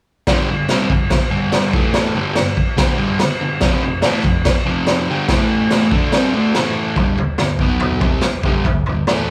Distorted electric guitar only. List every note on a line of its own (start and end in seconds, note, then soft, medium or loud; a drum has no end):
0.28 0.48 G2 medium
0.28 0.48 D3 loud
0.28 0.49 G3 medium
0.49 0.66 G2 medium
0.49 0.65 D3 medium
0.71 0.90 C3 medium
0.71 0.91 G3 medium
0.71 0.91 C4 loud
0.90 1.07 G2 medium
0.90 1.07 D3 medium
1.31 1.73 G2 loud
1.31 1.73 D3 loud
1.31 1.73 G3 loud
1.73 2.15 A2 medium
1.73 2.15 E3 loud
1.73 2.15 A3 loud
2.15 2.36 G2 loud
2.15 2.36 D3 loud
2.15 2.37 G3 loud
2.37 2.54 G2 medium
2.37 2.54 D3 medium
2.57 muted distorted electric guitar stroke medium
2.77 2.97 D3 loud
2.77 2.99 A3 loud
2.77 2.98 D4 loud
2.98 3.18 G2 loud
2.98 3.19 D3 loud
2.98 3.20 G3 loud
3.19 muted distorted electric guitar stroke medium
3.41 3.58 G2 medium
3.41 3.58 D3 medium
3.62 3.83 F2 medium
3.62 3.82 C3 loud
3.62 3.84 F3 loud
3.84 4.00 F2 medium
3.84 4.00 C3 medium
4.04 4.24 A2 loud
4.04 4.25 E3 medium
4.04 4.25 A3 loud
4.24 4.41 F2 medium
4.24 4.41 C3 medium
4.66 5.08 F2 loud
4.66 5.08 C3 loud
4.66 5.08 F3 loud
5.09 5.29 G2 loud
5.09 5.28 D3 loud
5.09 5.29 G3 loud
5.29 5.91 A2 loud
5.29 5.92 E3 loud
5.29 5.92 A3 medium
5.92 6.12 D3 medium
5.92 6.13 A3 medium
5.92 6.13 D4 loud
6.13 6.33 C3 medium
6.13 6.33 G3 loud
6.13 6.33 C4 loud
6.34 6.54 D3 medium
6.34 6.54 A3 loud
6.34 6.54 D4 loud
6.54 6.96 A2 medium
6.54 6.96 E3 medium
6.54 6.96 A3 loud
6.98 7.18 G2 medium
6.98 7.18 D3 medium
6.98 7.18 G3 medium
7.19 muted distorted electric guitar stroke medium
7.40 7.56 G2 medium
7.40 7.57 D3 medium
7.61 8.00 B2 medium
7.61 8.02 F#3 medium
7.61 8.01 B3 medium
8.00 8.22 C3 loud
8.00 8.23 G3 loud
8.00 8.22 C4 loud
8.23 muted distorted electric guitar stroke medium
8.45 8.65 G2 medium
8.45 8.65 D3 medium
8.45 8.65 G3 medium
8.67 8.83 G2 medium
8.67 8.83 D3 medium
8.89 9.05 G2 medium
8.89 9.05 D3 medium
9.09 9.30 A2 medium
9.09 9.30 E3 loud
9.09 9.30 A3 medium